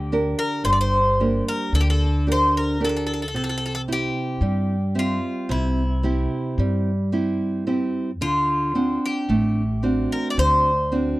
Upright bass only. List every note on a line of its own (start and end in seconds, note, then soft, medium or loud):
0.00 0.33 D2 medium
0.64 1.40 G1 medium
1.73 3.34 D2 medium
3.34 4.09 C2 medium
4.41 5.17 G2 medium
5.49 6.25 C2 medium
6.58 8.20 G2 medium
8.20 8.96 D2 medium
9.29 10.04 A1 medium
10.38 11.13 D2 medium